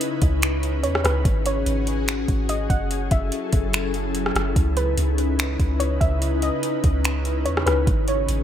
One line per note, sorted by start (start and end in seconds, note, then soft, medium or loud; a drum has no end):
0.00 1.22 C#3 medium
0.00 7.83 C#4 medium
0.00 1.22 D#4 medium
0.00 1.22 E4 medium
0.00 1.22 B4 medium
0.00 0.39 D#5 medium
0.00 closed hi-hat medium
0.22 0.85 C#2 loud
0.22 kick loud
0.22 closed hi-hat medium
0.42 finger snap loud
0.42 closed hi-hat medium
0.63 closed hi-hat medium
0.83 1.03 E2 loud
0.83 1.03 C#5 medium
0.83 closed hi-hat medium
0.95 cross-stick loud
1.04 1.24 C#2 loud
1.04 1.24 B4 medium
1.04 cross-stick loud
1.04 closed hi-hat medium
1.25 1.65 G#1 loud
1.25 2.89 F#4 medium
1.25 2.89 G#4 medium
1.25 kick loud
1.25 closed hi-hat medium
1.46 2.04 C#5 medium
1.46 closed hi-hat medium
1.66 2.26 G#1 loud
1.66 closed hi-hat medium
1.87 closed hi-hat medium
2.08 finger snap loud
2.08 closed hi-hat medium
2.28 2.68 G#1 loud
2.28 kick loud
2.28 closed hi-hat medium
2.49 2.69 D#5 medium
2.49 closed hi-hat medium
2.70 3.10 F#1 loud
2.70 2.90 F#5 medium
2.70 kick loud
2.70 closed hi-hat medium
2.91 4.55 F#3 medium
2.91 7.83 E4 medium
2.91 4.55 G#4 medium
2.91 4.54 A4 medium
2.91 closed hi-hat medium
3.11 3.31 F#1 loud
3.11 3.70 E5 medium
3.11 kick loud
3.11 closed hi-hat medium
3.32 closed hi-hat medium
3.53 4.32 F#1 loud
3.53 kick loud
3.53 closed hi-hat medium
3.73 finger snap loud
3.73 closed hi-hat medium
3.94 closed hi-hat medium
4.15 closed hi-hat medium
4.26 cross-stick medium
4.35 4.55 F#1 loud
4.35 cross-stick loud
4.35 closed hi-hat medium
4.56 4.96 C#2 loud
4.56 7.84 C#3 medium
4.56 7.84 D#4 medium
4.56 7.84 B4 medium
4.56 kick loud
4.56 closed hi-hat medium
4.77 5.35 B4 medium
4.77 closed hi-hat medium
4.98 5.57 C#2 loud
4.98 closed hi-hat medium
5.18 closed hi-hat medium
5.39 finger snap loud
5.39 closed hi-hat medium
5.60 5.99 C#2 loud
5.60 kick loud
5.60 closed hi-hat medium
5.80 6.00 C#5 medium
5.80 closed hi-hat medium
6.01 6.51 C#2 loud
6.01 6.20 E5 medium
6.01 kick loud
6.01 closed hi-hat medium
6.22 closed hi-hat medium
6.42 7.01 D#5 medium
6.42 closed hi-hat medium
6.63 closed hi-hat medium
6.84 7.47 C#2 loud
6.84 kick loud
6.84 closed hi-hat medium
7.05 finger snap loud
7.05 closed hi-hat medium
7.25 closed hi-hat medium
7.45 7.65 E2 loud
7.45 7.65 C#5 medium
7.45 closed hi-hat medium
7.57 cross-stick loud
7.66 7.86 C#2 loud
7.66 7.86 B4 medium
7.66 cross-stick loud
7.66 closed hi-hat medium
7.87 8.27 G#1 loud
7.87 8.43 C#4 medium
7.87 8.43 F#4 medium
7.87 8.43 G#4 medium
7.87 kick loud
7.87 closed hi-hat medium
8.08 8.43 C#5 medium
8.08 closed hi-hat medium
8.29 8.43 G#1 loud
8.29 closed hi-hat medium